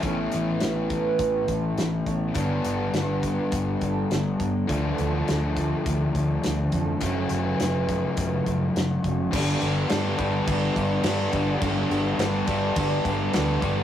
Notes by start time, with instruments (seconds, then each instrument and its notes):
0.01 picked electric bass A1, overdriven electric guitar A2 E3 A3 C#4 E4, clean electric guitar A3, twelve-string acoustic guitar C#5, kick, closed hi-hat
0.05 clean electric guitar B3 E4 A4 C#5
0.32 picked electric bass A1, twelve-string acoustic guitar B4, closed hi-hat
0.60 picked electric bass A1, snare, closed hi-hat
0.90 twelve-string acoustic guitar B4, kick, closed hi-hat
1.19 picked electric bass A1, kick, closed hi-hat
1.48 picked electric bass A1, twelve-string acoustic guitar A4, kick, closed hi-hat
1.78 picked electric bass A1, snare, closed hi-hat
2.06 picked electric bass A1, clean electric guitar B3 E4 A4 C#5, twelve-string acoustic guitar C#5, kick, closed hi-hat
2.11 clean electric guitar A3
2.34 picked electric bass G1, overdriven electric guitar G2 D3 G3 B3 D4, clean electric guitar G3 B3 D4 A4, twelve-string acoustic guitar C#5, kick, closed hi-hat
2.64 picked electric bass G1, twelve-string acoustic guitar B4, closed hi-hat
2.94 picked electric bass G1, snare, closed hi-hat
3.23 twelve-string acoustic guitar B4, kick, closed hi-hat
3.52 picked electric bass G1, kick, closed hi-hat
3.81 picked electric bass G1, twelve-string acoustic guitar A4, kick, closed hi-hat
4.11 picked electric bass G1, snare, closed hi-hat
4.38 picked electric bass G1, clean electric guitar G3 B3 D4 A4, twelve-string acoustic guitar C#5, kick, closed hi-hat
4.67 picked electric bass D2, overdriven electric guitar D3 F3 A3 D4, clean electric guitar D3 A3 F4, twelve-string acoustic guitar B4, kick, closed hi-hat
4.72 clean electric guitar A4
4.98 picked electric bass D2, twelve-string acoustic guitar A4, closed hi-hat
5.28 picked electric bass D2, snare, closed hi-hat
5.57 twelve-string acoustic guitar A4, kick, closed hi-hat
5.86 picked electric bass D2, kick, closed hi-hat
6.15 picked electric bass D2, twelve-string acoustic guitar G4, kick, closed hi-hat
6.44 picked electric bass D2, snare, closed hi-hat
6.72 picked electric bass F2, clean electric guitar E3 A3 F4 A4, twelve-string acoustic guitar A4, kick, closed hi-hat
6.76 clean electric guitar D3
7.01 picked electric bass F#1, overdriven electric guitar F#2 C#3 F#3 A3 C#4, clean electric guitar F#3 C#4 F#4 A4, twelve-string acoustic guitar C#5, kick, closed hi-hat
7.29 picked electric bass F#1, closed hi-hat
7.34 twelve-string acoustic guitar B4
7.60 picked electric bass F#1, snare, closed hi-hat
7.89 twelve-string acoustic guitar B4, kick, closed hi-hat
8.17 picked electric bass F#1, kick, closed hi-hat
8.46 picked electric bass F#1, twelve-string acoustic guitar A4, kick, closed hi-hat
8.76 picked electric bass F#1, snare, closed hi-hat
9.04 picked electric bass F#1, clean electric guitar C#4 F#4 A4, twelve-string acoustic guitar C#5, kick, closed hi-hat
9.09 clean electric guitar F#3
9.31 picked electric bass G1, overdriven electric guitar G2 D3 G3 B3 D4, distorted electric guitar G2 D3 G3, kick, crash
9.35 twelve-string acoustic guitar F#4
9.62 picked electric bass G1, distorted electric guitar G2 D3 G3, crash
9.88 distorted electric guitar G2 D3 G3, picked electric bass G2, overdriven electric guitar D3 G3 B3 D4, twelve-string acoustic guitar G4, snare, crash
10.17 picked electric bass G1, distorted electric guitar G2 D3 G3, overdriven electric guitar G3 B3 D4, kick, crash
10.47 picked electric bass G1, distorted electric guitar G2 D3 G3, twelve-string acoustic guitar D5, kick, crash
10.76 picked electric bass G1, distorted electric guitar G2 D3 G3, twelve-string acoustic guitar B4, kick, crash
11.03 picked electric bass G2, distorted electric guitar G2 D3 G3, overdriven electric guitar D3 G3 B3 D4, snare, crash
11.32 picked electric bass G1, distorted electric guitar G2 D3 G3, overdriven electric guitar G3 B3 D4, twelve-string acoustic guitar D5, kick, crash
11.61 picked electric bass G1, overdriven electric guitar G2 D3 G3 B3 D4, distorted electric guitar G2 D3 G3, twelve-string acoustic guitar F#4, kick, crash
11.91 picked electric bass G1, distorted electric guitar G2 D3 G3, crash
12.18 picked electric bass G1, distorted electric guitar G2 D3 G3, overdriven electric guitar D3 G3 B3 D4, twelve-string acoustic guitar G4, snare, crash
12.46 picked electric bass G1, distorted electric guitar G2 D3 G3, overdriven electric guitar G3 B3 D4, kick, crash
12.76 picked electric bass G1, distorted electric guitar G2 D3 G3, twelve-string acoustic guitar D5, kick, crash
13.05 picked electric bass G1, distorted electric guitar G2 D3 G3, twelve-string acoustic guitar B4, kick, crash
13.33 picked electric bass D2, distorted electric guitar G2 D3 G3, overdriven electric guitar D3 G3 B3 D4, snare, crash
13.61 picked electric bass G1, distorted electric guitar G2 D3 G3, overdriven electric guitar G3 B3 D4, twelve-string acoustic guitar D5, kick, crash